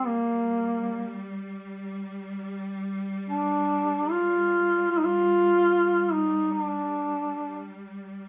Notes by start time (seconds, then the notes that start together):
Already playing: G3
0.07 A#3
3.30 D4
4.10 F4
4.91 F4
4.98 D#4
5.05 F4
6.13 D#4
6.52 D4